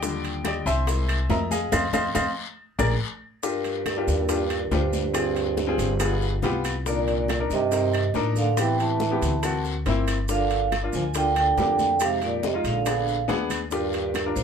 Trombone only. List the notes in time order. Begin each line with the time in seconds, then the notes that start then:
3.45 G2
4.72 G2
6.87 A#2
7.52 C3
8.38 D3
8.60 E3
8.80 E3
10.31 D3
10.95 F3
11.17 D3
11.38 D3
12.02 C3
12.23 A#2
12.45 C3
12.67 D3
13.72 G2
14.37 G#2